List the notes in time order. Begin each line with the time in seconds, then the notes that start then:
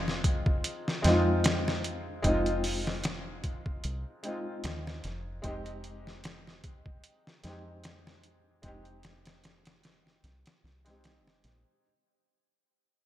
Already playing: F1 G#3 C4 D#4 F4
0.08 snare
0.24 kick, closed hi-hat
0.46 kick
0.64 closed hi-hat
0.88 snare
1.02 F2 G#3 C4 D#4, snare, closed hi-hat
1.08 F4
1.44 snare, closed hi-hat
1.68 snare
1.84 closed hi-hat
2.22 F1 G#3 C4 D#4, kick, closed hi-hat
2.28 F4
2.46 closed hi-hat
2.64 open hi-hat
2.87 snare
3.04 snare, closed hi-hat
3.44 kick, closed hi-hat
3.66 kick
3.84 C2, closed hi-hat
4.23 G#3 C4 D#4, closed hi-hat
4.28 F4
4.64 D#2, snare, closed hi-hat
4.87 snare
5.04 F1, snare, closed hi-hat
5.42 F1 G#3 C4 D#4, kick, closed hi-hat
5.47 G4
5.66 closed hi-hat
5.84 closed hi-hat
6.07 snare
6.24 snare, closed hi-hat
6.47 snare
6.64 kick, closed hi-hat
6.86 kick
7.04 closed hi-hat
7.27 snare
7.43 F2 G#3 C4 D#4, snare, closed hi-hat
7.49 G4
7.84 snare, closed hi-hat
8.07 snare
8.24 closed hi-hat
8.62 F1 G#3 C4 D#4, kick, closed hi-hat
8.68 G4
8.85 closed hi-hat
9.03 snare, closed hi-hat
9.26 snare, closed hi-hat
9.44 snare, closed hi-hat
9.65 snare, closed hi-hat
9.84 snare, closed hi-hat
10.07 snare
10.24 C2, snare, closed hi-hat
10.46 snare, closed hi-hat
10.64 C2, snare
10.85 G#3 C4 D#4, snare, closed hi-hat
10.90 G4
11.04 snare, closed hi-hat
11.26 F1, snare
11.44 A#1, snare, closed hi-hat